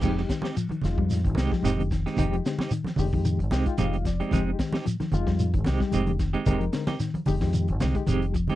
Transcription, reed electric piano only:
0.03 0.50 G#3 medium
0.03 0.51 D#4 medium
0.03 0.51 G4 medium
0.84 1.24 G#3 medium
0.84 1.24 D#4 medium
0.84 1.24 F4 medium
1.52 1.90 G#3 medium
1.52 1.90 D#4 medium
1.52 1.90 G4 medium
2.19 2.66 G#3 medium
2.19 2.65 D#4 medium
2.19 2.66 G4 medium
2.99 3.38 G#3 medium
2.99 3.38 D#4 medium
2.99 3.39 G4 medium
3.52 3.77 G5 medium
3.66 4.04 G#3 medium
3.66 4.04 D#4 medium
3.66 4.04 F4 medium
3.79 4.04 F5 medium
4.07 4.31 D5 medium
4.33 4.80 G#3 medium
4.33 4.80 D#4 medium
4.33 4.80 G4 medium
5.14 5.53 G#3 medium
5.14 5.53 D#4 medium
5.14 5.53 F4 loud
5.81 6.19 G#3 medium
5.81 6.19 D#4 medium
5.81 6.19 G4 medium
6.46 6.94 G#3 medium
6.46 6.94 D#4 medium
6.46 6.94 A#4 medium
7.27 7.67 G#3 medium
7.27 7.67 D#4 medium
7.27 7.67 G4 medium
7.95 8.33 G#3 medium
7.95 8.34 D#4 medium
7.95 8.34 G4 medium

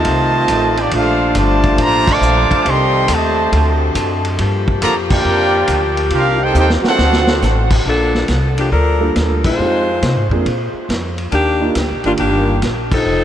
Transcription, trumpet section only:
0.00 0.78 F4 medium
0.00 0.78 C5 medium
0.00 0.78 D#5 medium
0.00 0.78 A5 loud
0.81 0.93 A#3 medium
0.81 0.93 D#4 medium
0.81 0.93 G4 medium
0.81 0.93 D5 medium
0.95 1.34 D4 medium
0.95 1.35 A4 medium
0.95 1.34 C5 medium
0.95 1.34 F5 medium
1.38 1.80 F4 medium
1.38 1.80 C5 medium
1.38 1.80 D5 medium
1.38 1.80 A5 loud
1.82 2.09 F4 loud
1.82 2.09 C5 loud
1.82 2.09 D5 loud
1.82 2.09 A#5 loud
2.11 2.67 C5 loud
2.11 2.67 F5 loud
2.11 2.67 A5 loud
2.11 2.67 D6 loud
2.69 3.11 A4 loud
2.69 3.10 D#5 loud
2.69 3.10 G5 loud
2.69 3.11 C6 loud
3.13 3.54 G4 medium
3.13 3.83 C5 medium
3.13 3.54 D#5 medium
3.13 3.83 A5 loud
4.82 4.95 F4 medium
4.82 4.95 A4 loud
4.82 4.95 D5 loud
4.82 4.96 A#5 loud
5.12 5.94 F4 loud
5.12 5.94 A#4 loud
5.12 5.94 D5 loud
5.12 5.94 G5 loud
6.13 6.40 D4 medium
6.13 6.40 G4 medium
6.13 6.39 A#4 medium
6.13 6.40 F5 loud
6.43 6.56 D#4 medium
6.43 6.56 A4 medium
6.43 6.56 C5 medium
6.43 6.56 G5 loud
6.58 6.71 D#4 loud
6.58 6.71 A4 medium
6.58 6.70 C5 loud
6.58 6.71 G5 loud
6.88 7.69 D4 medium
6.88 7.69 A4 medium
6.88 7.68 C5 medium
6.88 7.68 F#5 loud

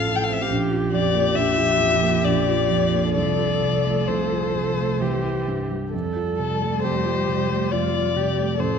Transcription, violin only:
0.00 0.17 F5 medium
0.16 0.25 G5 soft
0.24 0.34 F5 soft
0.33 0.44 E5 medium
0.42 0.50 F5 soft
0.93 1.37 D5 medium
1.36 2.25 E5 medium
2.24 3.14 D5 medium
3.15 4.09 D5 medium
4.07 5.47 C5 soft
6.38 6.80 A4 soft
6.83 7.73 C5 soft
7.71 8.62 D5 soft
8.60 8.79 C5 soft

